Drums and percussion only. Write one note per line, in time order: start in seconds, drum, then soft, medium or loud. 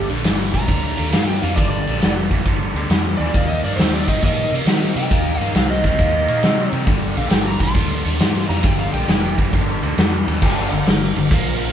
0.10 ride medium
0.24 snare loud
0.24 ride medium
0.54 kick medium
0.54 ride medium
0.68 kick medium
0.68 ride medium
0.98 ride medium
1.12 snare loud
1.12 ride loud
1.44 ride medium
1.57 kick loud
1.57 ride medium
1.87 ride medium
2.02 snare loud
2.02 ride loud
2.31 kick medium
2.31 ride medium
2.46 kick medium
2.46 ride medium
2.76 ride medium
2.90 snare loud
2.90 ride medium
3.20 ride medium
3.34 kick loud
3.34 ride medium
3.64 ride medium
3.79 snare loud
3.79 ride medium
4.08 kick medium
4.08 ride medium
4.23 kick medium
4.23 ride medium
4.53 ride medium
4.66 snare loud
4.66 ride medium
4.96 ride medium
5.11 kick loud
5.11 ride medium
5.41 ride medium
5.55 snare loud
5.55 ride medium
5.84 kick medium
5.84 ride medium
5.99 kick medium
5.99 ride medium
6.28 ride medium
6.43 snare loud
6.43 ride medium
6.73 ride medium
6.87 kick loud
6.87 ride medium
7.17 ride medium
7.30 snare loud
7.30 ride medium
7.60 kick medium
7.60 ride medium
7.75 kick medium
7.75 ride medium
8.05 ride medium
8.20 snare loud
8.20 ride medium
8.50 ride medium
8.63 kick loud
8.63 ride loud
8.94 ride medium
9.08 snare loud
9.08 ride medium
9.38 kick medium
9.38 ride medium
9.53 kick medium
9.53 ride medium
9.83 ride medium
9.98 snare loud
9.98 ride medium
10.28 ride medium
10.42 kick loud
10.42 crash loud
10.42 crash medium
10.72 crash medium
10.86 snare loud
10.86 crash medium
11.16 crash medium
11.31 kick loud
11.31 crash medium
11.60 crash medium